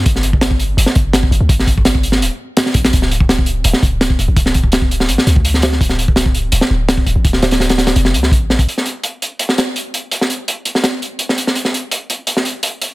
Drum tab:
HH |x-x-x-x-x-x-x-x-|x-x-x-x-x---x-xx|x-x-x-x-x-x-x-x-|x-x-x-x-x-x-x-x-|
SD |-o--o----o--o---|-o--o--o----oo-o|-o--o----o--o---|-o--o--o-oo--ooo|
BD |o--o-o----o--o--|o-oo-o--------o-|o--o-o----o--o--|o-oo-o-----o----|

HH |x-x-x-x-x---x-x-|x-xxxxxxx-x-x--x|x-x-x-x-x-x-x-x-|x-x-x-x-x-x-x-x-|
SD |-o--o----o--o---|-ooooooo-o-o--o-|-o-------oo-----|-o-----oo----o-o|
BD |o--o-o-------o--|o-----------o--o|----------------|----------------|

HH |x-x-x-x-x-x-x-x-|
SD |-o-------o------|
BD |----------------|